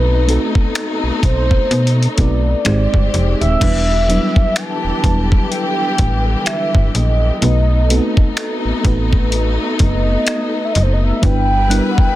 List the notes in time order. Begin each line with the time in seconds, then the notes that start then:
Already playing: B1 B2 A3 C4 D#4 F#4 B4
0.27 A3 C4 D#4 F#4 A4, closed hi-hat
0.55 B1, kick
0.75 finger snap, closed hi-hat
1.04 B1
1.23 B1 C5, kick, closed hi-hat
1.51 kick
1.71 B2, closed hi-hat
1.87 closed hi-hat
2.03 closed hi-hat
2.14 A3 C#5
2.18 B1 C4 D#4 F#4 B4 D5, kick, closed hi-hat
2.65 G#1 G#3 C4 D#4 G4 C5, finger snap, closed hi-hat
2.94 G1, kick
3.14 F1, closed hi-hat
3.41 D#1 E5, closed hi-hat
3.60 E1 D3 E3 G3 B3 D4 E4 G4 B4, kick, closed hi-hat, crash
4.08 F#3 B3 D4 E4 B4, closed hi-hat
4.14 G3
4.36 E1, kick
4.56 A5, finger snap, closed hi-hat
4.84 E1
5.03 E1 G3 B3 D4 E4 B4, kick, closed hi-hat
5.32 kick
5.51 G5, closed hi-hat
5.98 A1, kick, closed hi-hat
6.46 E5, finger snap, closed hi-hat
6.75 G1, kick
6.94 A#1 D#5, closed hi-hat
7.41 B1 A3 B3 D#4 F#4 B4, closed hi-hat
7.89 A3 B3 C4 F#4 A4, closed hi-hat
7.97 D#4
8.17 A1, kick
8.37 finger snap, closed hi-hat
8.65 A1
8.83 A1 A3 B3 D#4 F#4 B4, kick, closed hi-hat
9.13 kick
9.32 closed hi-hat
9.79 F#1 D#5, kick, closed hi-hat
10.27 finger snap, closed hi-hat
10.65 E5
10.73 F#1 D#5, closed hi-hat
10.83 C5
10.93 D#5
11.04 E5
11.22 G1 G3 B3 D4 E4 B4 G5, kick, closed hi-hat
11.69 G3 B3 D4 E4 A#4 F#6, closed hi-hat
11.79 B4
11.91 F#5
11.98 F#1 G5, kick